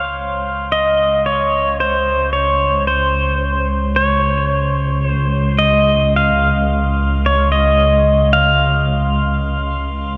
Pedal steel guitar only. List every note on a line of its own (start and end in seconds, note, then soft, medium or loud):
0.00 0.72 F5 medium
0.72 1.30 D#5 medium
1.26 1.80 C#5 medium
1.80 2.32 C5 medium
2.33 2.87 C#5 medium
2.87 3.68 C5 medium
3.96 5.06 C#5 medium
5.06 5.68 C5 medium
5.59 6.16 D#5 medium
6.16 7.31 F5 medium
7.26 7.56 C#5 medium
7.52 8.33 D#5 medium
8.33 10.17 F5 loud